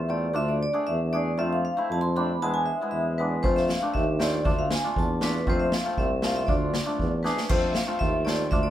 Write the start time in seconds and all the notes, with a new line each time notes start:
Already playing: E2 E5
0.09 A3 C4 F4 D5
0.33 D2 A3 D4 F4 E5
0.49 D5
0.63 D5
0.73 A3 D4 G#4
0.87 E2 E5
1.13 A3 D4 G#4 D5
1.37 F2 A3 C4 F4 E5
1.53 F5
1.65 F5
1.77 A3 C4 E4
1.90 F2 A5
2.01 C6
2.16 A3 C4 D4 B5
2.41 E2 G#3 B3 E4 A5
2.54 G#5
2.66 E5
2.81 G#3 B3 E4
2.91 E2 E5
3.18 G#3 B3 D4 B4
3.43 F2 A3 C4 F4 C5, kick
3.51 F5
3.56 E5, snare
3.68 F5, snare
3.81 A3 C4 D4
3.94 D#2 E5, kick
4.19 A3 C4 F4 D5, snare
4.44 D2 A3 D4 F4 E5, kick
4.59 F5
4.71 G#5, snare
4.84 A3 D4 F4
4.96 E2 A5, kick
5.21 A3 D4 F4 B4, snare
5.47 F2 A3 C4 F4 C5, kick
5.60 E5
5.72 snare
5.85 A3 C4 F4
5.97 C2 E5, kick
6.22 A3 C4 F4 F5, snare
6.36 E5
6.47 D2 A3 D4 F4 D5, kick
6.74 snare
6.86 A3 D4 F4
6.99 E2, kick
7.23 A3 D4 G#4 B4, snare
7.37 snare
7.49 F2 A3 C4 F4 C5, kick, crash
7.61 E5
7.74 F5, snare
7.87 A3 C4 F4
7.99 D#2 E5, kick
8.25 A3 C4 F4 D5, snare
8.51 D2 A3 D4 F4 E5, kick
8.63 D5